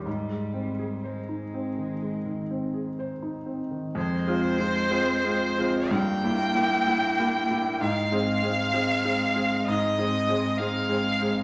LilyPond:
<<
  \new Staff \with { instrumentName = "Violin" } { \time 4/4 \key aes \major \tempo 4 = 63 r4 c''4 r4 c''4 | \key f \minor c''2 g''2 | f''2 ees''4 f''4 | }
  \new Staff \with { instrumentName = "Grand piano" } { \time 4/4 \key aes \major aes,16 aes16 c'16 aes'16 c''16 ees'16 c'16 ees16 aes16 ees16 c'16 aes'16 c''16 ees'16 c'16 ees16 | \key f \minor \tuplet 3/2 { f,8 <aes c' f'>8 <aes c' f'>8 <aes c' f'>8 <aes c' f'>8 <aes c' f'>8 g,8 <bes e'>8 <bes e'>8 <bes e'>8 <bes e'>8 <bes e'>8 } | \tuplet 3/2 { aes,8 <aes c' aes'>8 <aes c' aes'>8 <aes c' aes'>8 <aes c' aes'>8 <aes c' aes'>8 aes,8 <aes c' aes'>8 <aes c' aes'>8 <aes c' aes'>8 <aes c' aes'>8 <aes c' aes'>8 } | }
  \new Staff \with { instrumentName = "Cello" } { \clef bass \time 4/4 \key aes \major g4 aes2 r4 | \key f \minor aes2 bes2 | aes1 | }
>>